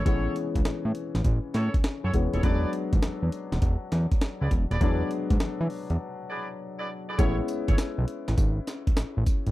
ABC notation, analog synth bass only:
X:1
M:4/4
L:1/16
Q:"Swing 16ths" 1/4=101
K:A
V:1 name="Analog synth bass" clef=bass
A,,,2 z C,, z A,, z A,,, A,,, z A,, z2 F,, E,,, ^D,,, | E,,,2 z G,,, z E,, z E,,, E,,, z E,, z2 C,, E,,, ^D,,, | E,,2 z G,, E, E, z E,, z8 | A,,,2 z G,,, z B,,, z A,,, G,,,2 z2 A,,, A,,, z G,,, |]